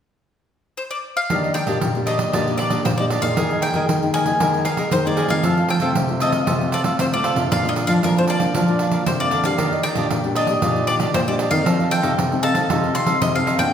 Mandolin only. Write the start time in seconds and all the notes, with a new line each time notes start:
0.77 C5
0.91 D5
1.17 F5
1.54 G5
2.07 D#5
2.58 D5
2.85 C5
2.98 D5
3.22 F5
3.62 G5
4.14 G#5
4.65 F5
4.92 C5
5.07 D5
5.30 F5
5.70 G5
6.22 D#5
6.74 D5
7.00 C5
7.14 D5
7.52 F5
7.69 D#5
7.87 F5
8.04 A#4
8.18 C5
8.30 D5
9.06 C5
9.20 D5
9.45 F5
9.83 G5
10.36 D#5
10.87 D5
11.14 C5
11.28 D5
11.51 F5
11.91 G5
12.43 A5
12.95 C6
13.22 D#5
13.35 F5
13.59 G5